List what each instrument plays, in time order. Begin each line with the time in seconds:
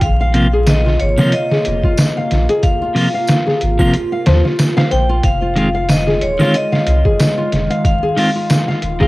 Already playing: ambient pad F4
0.01 sub bass A#1, ambient pad C3 A#3, vibraphone F5, kick, closed hi-hat
0.21 nylon-string guitar F5
0.34 clean electric guitar C3 F3 A#3 F4, closed hi-hat
0.53 nylon-string guitar G#4
0.67 vibraphone D#5, snare, closed hi-hat, tambourine
0.86 nylon-string guitar F4, snare
1.00 sub bass G#1, vibraphone C#5, closed hi-hat
1.18 clean electric guitar C3 F3 A#3 F4, nylon-string guitar F5, snare, triangle
1.32 vibraphone D#5, closed hi-hat
1.52 nylon-string guitar G#4, snare
1.65 sub bass F1, closed hi-hat
1.83 nylon-string guitar F4, kick
1.97 snare, closed hi-hat, tambourine
2.17 nylon-string guitar F5
2.31 sub bass A#1, snare, closed hi-hat
2.49 nylon-string guitar G#4, closed hi-hat
2.63 vibraphone F5, kick, closed hi-hat
2.82 nylon-string guitar F4
2.95 clean electric guitar C3 F3 A#3 F4, open hi-hat
3.14 nylon-string guitar F5
3.27 snare, closed hi-hat, tambourine
3.47 nylon-string guitar G#4, snare
3.61 sub bass G#1, closed hi-hat
3.79 clean electric guitar C3 F3 A#3 F4, nylon-string guitar F4, kick, triangle
3.93 closed hi-hat
4.12 nylon-string guitar F5
4.26 sub bass D#2, nylon-string guitar F3, snare, closed hi-hat
4.45 nylon-string guitar F4, snare
4.59 snare, closed hi-hat, tambourine
4.77 nylon-string guitar F5, snare
4.91 sub bass A#1, nylon-string guitar C5, vibraphone G5, closed hi-hat
5.09 nylon-string guitar F4
5.23 sub bass F1, ambient pad D#3 G#3, vibraphone F5, kick, closed hi-hat
5.42 nylon-string guitar F4
5.56 clean electric guitar D#3 G#3 C4 F4, closed hi-hat
5.75 nylon-string guitar F5
5.89 vibraphone D#5, snare, closed hi-hat, tambourine
6.07 nylon-string guitar G#4, snare
6.21 sub bass D#1, vibraphone C#5, closed hi-hat
6.39 clean electric guitar D#3 G#3 C4 F4, nylon-string guitar F4, snare, triangle
6.54 vibraphone D#5, closed hi-hat
6.72 nylon-string guitar F5, snare
6.87 sub bass C2, closed hi-hat
7.05 nylon-string guitar G#4, kick
7.19 snare, closed hi-hat, tambourine
7.37 nylon-string guitar F4
7.52 sub bass F1, snare, closed hi-hat
7.70 nylon-string guitar F5, closed hi-hat
7.85 vibraphone F5, kick, closed hi-hat
8.03 nylon-string guitar G#4
8.16 clean electric guitar D#3 G#3 C4 F4, open hi-hat
8.35 nylon-string guitar F4
8.50 snare, closed hi-hat, tambourine
8.68 nylon-string guitar F5, snare
8.82 sub bass D#1, closed hi-hat
9.00 clean electric guitar D#3 G#3 C4 F4, nylon-string guitar G#4, kick